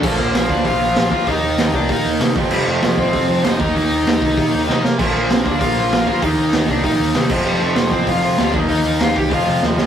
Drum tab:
CC |x-------|--------|x-------|--------|
HH |--o-o-o-|o-o-o-o-|--o-o-o-|o-o-o---|
SD |--o---o-|--o---o-|--o---o-|--o---oo|
BD |o--oo--o|o--oo--o|---oo--o|---oo---|

CC |x-------|-------x|--------|--------|
HH |--o-o-o-|o-o-o-o-|--o-o-o-|o-o-o---|
SD |--o---o-|--o---o-|--o---o-|--o---oo|
BD |o--oo--o|o--oo--o|---oo--o|---oo---|